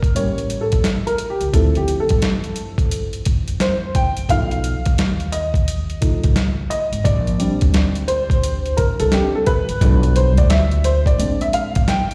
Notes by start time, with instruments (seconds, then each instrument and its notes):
Already playing: upright bass G1, upright piano A#4
0.03 kick, closed hi-hat
0.15 upright bass A1, upright piano G3 A#3 C#4 C#5, closed hi-hat
0.38 closed hi-hat
0.50 closed hi-hat
0.61 upright piano A4
0.72 upright bass A#1, kick, closed hi-hat
0.84 snare, closed hi-hat
1.07 upright piano A#4, closed hi-hat
1.18 closed hi-hat
1.30 upright piano G4
1.41 upright bass C#2, closed hi-hat
1.53 upright bass D2, upright piano F3 C4 E4 A4, kick, closed hi-hat
1.75 upright piano G4, closed hi-hat
1.88 closed hi-hat
2.00 upright piano A4
2.09 upright bass G2, kick, closed hi-hat
2.22 snare, closed hi-hat
2.44 closed hi-hat
2.56 closed hi-hat
2.78 kick, closed hi-hat
2.91 closed hi-hat
3.13 closed hi-hat
3.25 kick, closed hi-hat
3.47 upright bass F2, closed hi-hat
3.60 upright piano C5, snare, closed hi-hat
3.95 upright piano G5, kick, closed hi-hat
4.17 closed hi-hat
4.29 upright bass B1, upright piano F3 A3 D#4 F5, kick, closed hi-hat
4.51 closed hi-hat
4.64 closed hi-hat
4.85 upright bass D#2, kick, closed hi-hat
4.98 snare, closed hi-hat
5.20 closed hi-hat
5.32 upright piano D#5, closed hi-hat
5.54 kick, closed hi-hat
5.68 closed hi-hat
5.90 closed hi-hat
6.01 upright piano F3 A3 D#4, kick, closed hi-hat
6.24 upright bass C#2, kick, closed hi-hat
6.36 snare, closed hi-hat
6.70 upright piano D#5, closed hi-hat
6.92 upright bass G#1, closed hi-hat
7.04 upright bass A#1, upright piano D5, kick, closed hi-hat
7.27 closed hi-hat
7.38 upright piano G3 C4 D4, closed hi-hat
7.61 upright bass D2, kick, closed hi-hat
7.74 snare, closed hi-hat
7.95 closed hi-hat
8.08 upright piano C5, closed hi-hat
8.30 kick, closed hi-hat
8.43 closed hi-hat
8.66 closed hi-hat
8.77 upright piano A#4, kick, closed hi-hat
8.99 upright bass C2, upright piano A4, closed hi-hat
9.12 upright piano G3 C4 D4 G4, snare, closed hi-hat
9.35 upright piano A4
9.46 upright piano B4, kick, closed hi-hat
9.69 upright bass A1, closed hi-hat
9.81 upright bass B1, upright piano F3 A3 D4, kick, closed hi-hat
10.03 closed hi-hat
10.16 upright piano C5, closed hi-hat
10.37 upright bass D2, upright piano D5, kick, closed hi-hat
10.50 upright piano E5, snare, closed hi-hat
10.71 closed hi-hat
10.84 upright piano C5, closed hi-hat
11.06 upright piano D5, kick, closed hi-hat
11.18 upright bass A#1, upright piano G#3 C4 D4, closed hi-hat
11.41 upright piano E5, closed hi-hat
11.53 upright piano F5, closed hi-hat
11.75 upright bass A#1, kick, closed hi-hat
11.88 upright piano G5, snare, closed hi-hat
12.11 closed hi-hat